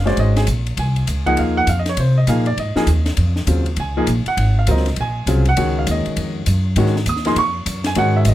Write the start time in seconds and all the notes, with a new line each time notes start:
Already playing: F#1
0.05 G#3 C#4 F#4 C5 D5, snare, ride
0.17 G#1 D#5, ride
0.36 G#4, snare, ride
0.47 A#1, hi-hat pedal, ride
0.66 ride
0.77 C2 G#5, ride
0.96 ride
1.07 C#2, hi-hat pedal, ride
1.26 F3 A#3 D#4 G#4 F#5, kick, ride
1.37 D#2 F5, ride
1.57 F#5
1.67 F2 F5, hi-hat pedal, ride
1.79 D#5
1.86 C#5, snare, ride
1.97 C3 C5, ride
2.17 D#5
2.27 A#2 F3 A#3 D#4 G#4 F5, hi-hat pedal, ride
2.46 D5, ride
2.57 G#2 D#5, ride
2.76 F3 A#3 D#4 G#4, muted upright bass stroke, snare
2.87 D#2, hi-hat pedal, ride
3.06 snare, ride
3.17 F2, ride
3.36 snare
3.47 D#2 C#3 F#3 C4 F4, hi-hat pedal, ride
3.66 ride
3.76 C#2 G#5, ride
3.97 F3 A#3 D#4 G#4
4.07 A#1, hi-hat pedal, ride
4.26 F#5, muted upright bass stroke, ride
4.37 G#1, ride
4.59 F5
4.67 C#2 F#3 C4 F4 A#4, hi-hat pedal, ride
4.71 D#5
4.77 snare
4.86 snare, ride
4.96 A#1, ride
5.01 G#5
5.26 C2 C#3 F#3 C4 F4, hi-hat pedal, ride
5.45 F#5, ride
5.57 C#2 D#3 G#3 C#4 F#4, ride
5.79 F5
5.87 D#2, hi-hat pedal, ride
5.91 D#5
6.06 muted upright bass stroke, ride
6.17 F2, ride
6.46 F#2, hi-hat pedal, ride
6.76 G#2 D#3 G#3 C#4 F#4, ride
6.86 snare
6.96 snare
7.06 D#2 D#6, hi-hat pedal, ride
7.16 snare
7.25 F3 A#3 D#4 G#4 C6, snare, ride
7.35 F2 C#6, ride
7.66 F#2, hi-hat pedal, ride
7.84 G#5, snare, ride
7.95 G#2 D#3 G#3 C#4 F#4 F#5, ride
8.17 E5
8.25 G#1 D#5, hi-hat pedal, ride